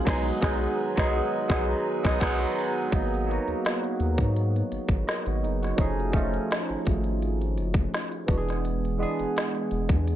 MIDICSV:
0, 0, Header, 1, 5, 480
1, 0, Start_track
1, 0, Tempo, 714286
1, 45, Time_signature, 4, 2, 24, 8
1, 6826, End_track
2, 0, Start_track
2, 0, Title_t, "Tine electric piano"
2, 0, Program_c, 0, 4
2, 0, Control_c, 0, 64, 127
2, 32, Note_on_c, 0, 54, 100
2, 41, Note_on_c, 0, 56, 103
2, 49, Note_on_c, 0, 59, 91
2, 55, Control_c, 0, 64, 0
2, 58, Note_on_c, 0, 63, 88
2, 67, Note_on_c, 0, 68, 93
2, 192, Control_c, 0, 64, 127
2, 204, Note_off_c, 0, 54, 0
2, 209, Note_off_c, 0, 56, 0
2, 213, Note_off_c, 0, 59, 0
2, 219, Note_off_c, 0, 63, 0
2, 224, Note_off_c, 0, 68, 0
2, 273, Note_on_c, 0, 54, 85
2, 281, Note_on_c, 0, 56, 87
2, 289, Note_on_c, 0, 59, 77
2, 298, Note_on_c, 0, 63, 86
2, 307, Note_on_c, 0, 68, 84
2, 444, Note_off_c, 0, 54, 0
2, 449, Note_off_c, 0, 56, 0
2, 454, Note_off_c, 0, 59, 0
2, 459, Note_off_c, 0, 63, 0
2, 464, Note_off_c, 0, 68, 0
2, 642, Note_on_c, 0, 54, 95
2, 651, Note_on_c, 0, 56, 93
2, 658, Note_on_c, 0, 59, 86
2, 666, Note_on_c, 0, 63, 93
2, 676, Note_on_c, 0, 68, 94
2, 807, Note_off_c, 0, 54, 0
2, 812, Note_off_c, 0, 56, 0
2, 817, Note_off_c, 0, 59, 0
2, 821, Note_off_c, 0, 63, 0
2, 827, Note_off_c, 0, 68, 0
2, 995, Note_on_c, 0, 54, 86
2, 1002, Note_on_c, 0, 56, 82
2, 1013, Note_on_c, 0, 59, 82
2, 1021, Note_on_c, 0, 63, 79
2, 1165, Note_off_c, 0, 54, 0
2, 1170, Note_off_c, 0, 56, 0
2, 1176, Note_off_c, 0, 59, 0
2, 1180, Note_off_c, 0, 63, 0
2, 1364, Note_on_c, 0, 54, 88
2, 1372, Note_on_c, 0, 56, 97
2, 1380, Note_on_c, 0, 59, 90
2, 1389, Note_on_c, 0, 63, 92
2, 1463, Note_off_c, 0, 54, 0
2, 1467, Note_off_c, 0, 56, 0
2, 1472, Note_off_c, 0, 59, 0
2, 1477, Note_off_c, 0, 63, 0
2, 1477, Note_on_c, 0, 54, 99
2, 1483, Note_on_c, 0, 56, 100
2, 1493, Note_on_c, 0, 59, 94
2, 1501, Note_on_c, 0, 63, 99
2, 1647, Note_off_c, 0, 54, 0
2, 1650, Note_off_c, 0, 56, 0
2, 1656, Note_off_c, 0, 59, 0
2, 1660, Note_off_c, 0, 63, 0
2, 1958, Note_on_c, 0, 54, 84
2, 1966, Note_on_c, 0, 58, 70
2, 1972, Control_c, 0, 64, 0
2, 1974, Note_on_c, 0, 59, 62
2, 1982, Note_on_c, 0, 63, 70
2, 1990, Note_on_c, 0, 68, 75
2, 2072, Control_c, 0, 64, 127
2, 2154, Note_off_c, 0, 54, 0
2, 2158, Note_off_c, 0, 58, 0
2, 2162, Note_off_c, 0, 59, 0
2, 2166, Note_off_c, 0, 63, 0
2, 2170, Note_off_c, 0, 68, 0
2, 2198, Note_on_c, 0, 54, 76
2, 2207, Note_on_c, 0, 58, 68
2, 2216, Note_on_c, 0, 59, 72
2, 2223, Note_on_c, 0, 63, 61
2, 2230, Note_on_c, 0, 66, 78
2, 2958, Note_off_c, 0, 54, 0
2, 2963, Note_off_c, 0, 58, 0
2, 2967, Note_off_c, 0, 59, 0
2, 2971, Note_off_c, 0, 63, 0
2, 2974, Note_off_c, 0, 66, 0
2, 3409, Note_on_c, 0, 75, 64
2, 3413, Note_on_c, 0, 70, 49
2, 3530, Note_off_c, 0, 75, 0
2, 3532, Note_off_c, 0, 70, 0
2, 3541, Note_on_c, 0, 71, 50
2, 3544, Note_on_c, 0, 66, 49
2, 3643, Note_off_c, 0, 71, 0
2, 3644, Note_off_c, 0, 66, 0
2, 3649, Note_on_c, 0, 68, 53
2, 3654, Note_on_c, 0, 63, 54
2, 3770, Note_off_c, 0, 68, 0
2, 3773, Note_off_c, 0, 63, 0
2, 3778, Note_on_c, 0, 66, 53
2, 3783, Note_on_c, 0, 61, 49
2, 3872, Note_on_c, 0, 53, 84
2, 3879, Note_on_c, 0, 57, 72
2, 3881, Note_off_c, 0, 61, 0
2, 3889, Note_on_c, 0, 61, 69
2, 3894, Control_c, 0, 64, 0
2, 3896, Note_on_c, 0, 63, 72
2, 3904, Note_on_c, 0, 68, 84
2, 4001, Control_c, 0, 64, 127
2, 4004, Note_off_c, 0, 66, 0
2, 4071, Note_off_c, 0, 53, 0
2, 4074, Note_off_c, 0, 57, 0
2, 4079, Note_off_c, 0, 61, 0
2, 4083, Note_off_c, 0, 63, 0
2, 4087, Note_off_c, 0, 68, 0
2, 4110, Note_on_c, 0, 53, 76
2, 4120, Note_on_c, 0, 57, 71
2, 4127, Note_on_c, 0, 61, 71
2, 4136, Note_on_c, 0, 63, 62
2, 4143, Note_on_c, 0, 65, 77
2, 4874, Note_off_c, 0, 53, 0
2, 4879, Note_off_c, 0, 57, 0
2, 4883, Note_off_c, 0, 61, 0
2, 4887, Note_off_c, 0, 63, 0
2, 4891, Note_off_c, 0, 65, 0
2, 5552, Note_on_c, 0, 52, 74
2, 5559, Note_on_c, 0, 56, 63
2, 5568, Note_on_c, 0, 59, 76
2, 5574, Control_c, 0, 64, 0
2, 5577, Note_on_c, 0, 62, 64
2, 5585, Note_on_c, 0, 66, 69
2, 5622, Note_off_c, 0, 66, 0
2, 5628, Note_on_c, 0, 68, 86
2, 5707, Control_c, 0, 64, 127
2, 5950, Note_off_c, 0, 52, 0
2, 5953, Note_off_c, 0, 56, 0
2, 5958, Note_off_c, 0, 59, 0
2, 5962, Note_off_c, 0, 62, 0
2, 5988, Note_off_c, 0, 68, 0
2, 6032, Note_on_c, 0, 52, 68
2, 6041, Note_on_c, 0, 56, 75
2, 6050, Note_on_c, 0, 59, 74
2, 6059, Note_on_c, 0, 62, 68
2, 6066, Note_on_c, 0, 68, 85
2, 6795, Note_off_c, 0, 52, 0
2, 6800, Note_off_c, 0, 56, 0
2, 6804, Note_off_c, 0, 59, 0
2, 6809, Note_off_c, 0, 62, 0
2, 6812, Note_off_c, 0, 68, 0
2, 6826, End_track
3, 0, Start_track
3, 0, Title_t, "Tonewheel organ"
3, 0, Program_c, 1, 16
3, 0, Note_on_c, 1, 54, 64
3, 0, Note_on_c, 1, 56, 56
3, 44, Note_on_c, 1, 51, 62
3, 47, Note_on_c, 1, 59, 53
3, 1939, Note_off_c, 1, 54, 0
3, 1939, Note_off_c, 1, 56, 0
3, 1945, Note_off_c, 1, 51, 0
3, 1947, Note_off_c, 1, 59, 0
3, 6826, End_track
4, 0, Start_track
4, 0, Title_t, "Analog synth bass"
4, 0, Program_c, 2, 38
4, 48, Note_on_c, 2, 35, 105
4, 213, Note_off_c, 2, 35, 0
4, 288, Note_on_c, 2, 35, 96
4, 453, Note_off_c, 2, 35, 0
4, 659, Note_on_c, 2, 35, 104
4, 817, Note_off_c, 2, 35, 0
4, 1009, Note_on_c, 2, 35, 97
4, 1174, Note_off_c, 2, 35, 0
4, 1379, Note_on_c, 2, 35, 116
4, 1471, Note_off_c, 2, 35, 0
4, 1490, Note_on_c, 2, 35, 103
4, 1654, Note_off_c, 2, 35, 0
4, 1969, Note_on_c, 2, 32, 102
4, 2279, Note_off_c, 2, 32, 0
4, 2340, Note_on_c, 2, 39, 45
4, 2383, Note_off_c, 2, 39, 0
4, 2691, Note_on_c, 2, 39, 90
4, 2812, Note_on_c, 2, 44, 90
4, 2823, Note_off_c, 2, 39, 0
4, 3109, Note_off_c, 2, 44, 0
4, 3173, Note_on_c, 2, 32, 41
4, 3223, Note_off_c, 2, 32, 0
4, 3288, Note_on_c, 2, 32, 89
4, 3384, Note_off_c, 2, 32, 0
4, 3542, Note_on_c, 2, 32, 99
4, 3654, Note_on_c, 2, 30, 84
4, 3664, Note_off_c, 2, 32, 0
4, 3853, Note_off_c, 2, 30, 0
4, 3889, Note_on_c, 2, 29, 105
4, 4293, Note_off_c, 2, 29, 0
4, 4504, Note_on_c, 2, 32, 46
4, 4546, Note_off_c, 2, 32, 0
4, 4618, Note_on_c, 2, 32, 96
4, 5091, Note_on_c, 2, 30, 81
4, 5101, Note_off_c, 2, 32, 0
4, 5291, Note_off_c, 2, 30, 0
4, 5569, Note_on_c, 2, 28, 101
4, 6082, Note_off_c, 2, 28, 0
4, 6182, Note_on_c, 2, 28, 46
4, 6224, Note_off_c, 2, 28, 0
4, 6532, Note_on_c, 2, 28, 87
4, 6651, Note_on_c, 2, 40, 93
4, 6662, Note_off_c, 2, 28, 0
4, 6826, Note_off_c, 2, 40, 0
4, 6826, End_track
5, 0, Start_track
5, 0, Title_t, "Drums"
5, 45, Note_on_c, 9, 36, 104
5, 45, Note_on_c, 9, 49, 72
5, 57, Note_on_c, 9, 38, 94
5, 112, Note_off_c, 9, 36, 0
5, 112, Note_off_c, 9, 49, 0
5, 125, Note_off_c, 9, 38, 0
5, 285, Note_on_c, 9, 36, 109
5, 296, Note_on_c, 9, 38, 101
5, 352, Note_off_c, 9, 36, 0
5, 363, Note_off_c, 9, 38, 0
5, 655, Note_on_c, 9, 36, 94
5, 668, Note_on_c, 9, 38, 86
5, 722, Note_off_c, 9, 36, 0
5, 735, Note_off_c, 9, 38, 0
5, 1006, Note_on_c, 9, 36, 110
5, 1018, Note_on_c, 9, 38, 97
5, 1073, Note_off_c, 9, 36, 0
5, 1085, Note_off_c, 9, 38, 0
5, 1375, Note_on_c, 9, 36, 98
5, 1388, Note_on_c, 9, 38, 103
5, 1442, Note_off_c, 9, 36, 0
5, 1455, Note_off_c, 9, 38, 0
5, 1486, Note_on_c, 9, 36, 96
5, 1486, Note_on_c, 9, 49, 75
5, 1498, Note_on_c, 9, 38, 106
5, 1553, Note_off_c, 9, 49, 0
5, 1554, Note_off_c, 9, 36, 0
5, 1566, Note_off_c, 9, 38, 0
5, 1965, Note_on_c, 9, 36, 104
5, 1972, Note_on_c, 9, 42, 74
5, 2032, Note_off_c, 9, 36, 0
5, 2039, Note_off_c, 9, 42, 0
5, 2109, Note_on_c, 9, 42, 38
5, 2177, Note_off_c, 9, 42, 0
5, 2225, Note_on_c, 9, 42, 56
5, 2293, Note_off_c, 9, 42, 0
5, 2337, Note_on_c, 9, 42, 42
5, 2404, Note_off_c, 9, 42, 0
5, 2453, Note_on_c, 9, 42, 73
5, 2461, Note_on_c, 9, 38, 114
5, 2520, Note_off_c, 9, 42, 0
5, 2528, Note_off_c, 9, 38, 0
5, 2577, Note_on_c, 9, 42, 32
5, 2644, Note_off_c, 9, 42, 0
5, 2687, Note_on_c, 9, 42, 52
5, 2754, Note_off_c, 9, 42, 0
5, 2809, Note_on_c, 9, 36, 83
5, 2813, Note_on_c, 9, 42, 46
5, 2877, Note_off_c, 9, 36, 0
5, 2880, Note_off_c, 9, 42, 0
5, 2933, Note_on_c, 9, 42, 62
5, 3000, Note_off_c, 9, 42, 0
5, 3065, Note_on_c, 9, 42, 45
5, 3133, Note_off_c, 9, 42, 0
5, 3171, Note_on_c, 9, 42, 68
5, 3238, Note_off_c, 9, 42, 0
5, 3283, Note_on_c, 9, 36, 84
5, 3288, Note_on_c, 9, 42, 38
5, 3350, Note_off_c, 9, 36, 0
5, 3355, Note_off_c, 9, 42, 0
5, 3414, Note_on_c, 9, 42, 56
5, 3418, Note_on_c, 9, 38, 93
5, 3481, Note_off_c, 9, 42, 0
5, 3486, Note_off_c, 9, 38, 0
5, 3536, Note_on_c, 9, 42, 51
5, 3603, Note_off_c, 9, 42, 0
5, 3658, Note_on_c, 9, 42, 54
5, 3726, Note_off_c, 9, 42, 0
5, 3783, Note_on_c, 9, 42, 47
5, 3793, Note_on_c, 9, 38, 32
5, 3850, Note_off_c, 9, 42, 0
5, 3860, Note_off_c, 9, 38, 0
5, 3885, Note_on_c, 9, 36, 102
5, 3894, Note_on_c, 9, 42, 72
5, 3952, Note_off_c, 9, 36, 0
5, 3961, Note_off_c, 9, 42, 0
5, 4028, Note_on_c, 9, 42, 33
5, 4095, Note_off_c, 9, 42, 0
5, 4122, Note_on_c, 9, 36, 87
5, 4148, Note_on_c, 9, 42, 61
5, 4189, Note_off_c, 9, 36, 0
5, 4215, Note_off_c, 9, 42, 0
5, 4259, Note_on_c, 9, 42, 43
5, 4326, Note_off_c, 9, 42, 0
5, 4374, Note_on_c, 9, 42, 70
5, 4382, Note_on_c, 9, 38, 119
5, 4441, Note_off_c, 9, 42, 0
5, 4449, Note_off_c, 9, 38, 0
5, 4497, Note_on_c, 9, 42, 30
5, 4564, Note_off_c, 9, 42, 0
5, 4606, Note_on_c, 9, 42, 54
5, 4615, Note_on_c, 9, 36, 75
5, 4674, Note_off_c, 9, 42, 0
5, 4682, Note_off_c, 9, 36, 0
5, 4731, Note_on_c, 9, 42, 45
5, 4798, Note_off_c, 9, 42, 0
5, 4854, Note_on_c, 9, 42, 64
5, 4921, Note_off_c, 9, 42, 0
5, 4983, Note_on_c, 9, 42, 45
5, 5050, Note_off_c, 9, 42, 0
5, 5091, Note_on_c, 9, 42, 69
5, 5158, Note_off_c, 9, 42, 0
5, 5202, Note_on_c, 9, 36, 85
5, 5207, Note_on_c, 9, 42, 43
5, 5269, Note_off_c, 9, 36, 0
5, 5275, Note_off_c, 9, 42, 0
5, 5334, Note_on_c, 9, 42, 65
5, 5339, Note_on_c, 9, 38, 96
5, 5402, Note_off_c, 9, 42, 0
5, 5406, Note_off_c, 9, 38, 0
5, 5456, Note_on_c, 9, 42, 49
5, 5523, Note_off_c, 9, 42, 0
5, 5566, Note_on_c, 9, 36, 92
5, 5578, Note_on_c, 9, 42, 60
5, 5633, Note_off_c, 9, 36, 0
5, 5645, Note_off_c, 9, 42, 0
5, 5702, Note_on_c, 9, 42, 51
5, 5712, Note_on_c, 9, 38, 35
5, 5769, Note_off_c, 9, 42, 0
5, 5779, Note_off_c, 9, 38, 0
5, 5812, Note_on_c, 9, 42, 71
5, 5880, Note_off_c, 9, 42, 0
5, 5947, Note_on_c, 9, 42, 35
5, 6014, Note_off_c, 9, 42, 0
5, 6066, Note_on_c, 9, 42, 59
5, 6134, Note_off_c, 9, 42, 0
5, 6178, Note_on_c, 9, 42, 39
5, 6246, Note_off_c, 9, 42, 0
5, 6294, Note_on_c, 9, 42, 77
5, 6302, Note_on_c, 9, 38, 104
5, 6361, Note_off_c, 9, 42, 0
5, 6369, Note_off_c, 9, 38, 0
5, 6416, Note_on_c, 9, 42, 38
5, 6484, Note_off_c, 9, 42, 0
5, 6525, Note_on_c, 9, 42, 58
5, 6593, Note_off_c, 9, 42, 0
5, 6647, Note_on_c, 9, 36, 83
5, 6650, Note_on_c, 9, 42, 52
5, 6714, Note_off_c, 9, 36, 0
5, 6717, Note_off_c, 9, 42, 0
5, 6770, Note_on_c, 9, 42, 75
5, 6826, Note_off_c, 9, 42, 0
5, 6826, End_track
0, 0, End_of_file